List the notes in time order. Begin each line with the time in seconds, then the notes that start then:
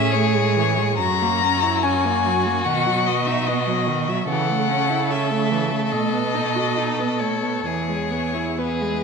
Already playing: A2 C#4 G#4 E5
0.12 A3 C#5
0.35 G#3
0.56 E3
0.78 G#3
0.97 F#2 F#3 F#4 A#5
1.22 A#3
1.43 C#4
1.62 E4
1.82 C#4 G#5
2.05 A#3
2.25 F#3
2.46 A#3
2.64 B2 D#3 F#5
2.86 F#3
3.06 B3 D#5
3.26 D#4 E5
3.47 B3 D#5
3.67 F#3
3.87 D#3
4.08 F#3 E5
4.28 C#3 E3 A4 F#5
4.50 A3
4.69 C#4
4.90 E4
5.11 C#4 E5
5.31 A3
5.51 E3
5.71 A3
5.85 E5
5.91 B2 A3 D#5
6.13 B3
6.35 D#4
6.56 F#4
6.77 D#4
6.99 B3
7.19 A3 C#5
7.43 B3
7.65 E2 E3 G#4 C#5
7.89 G#3
8.11 B3
8.34 E4
8.58 B3 G#4 B4
8.82 G#3